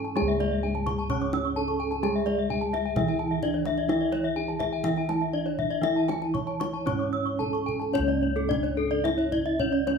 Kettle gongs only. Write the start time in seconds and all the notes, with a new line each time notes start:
Already playing: G#2
0.17 G#4
0.22 C#2
0.64 D4
1.57 D4
2.03 G#4
2.50 D4
2.97 E3
3.43 D4
3.89 E4
4.36 D4
4.84 E3
5.33 D4
5.83 E4
6.35 D4
6.86 G#2
7.40 D4
7.94 C#4
7.99 C#2
8.49 D4
9.59 D4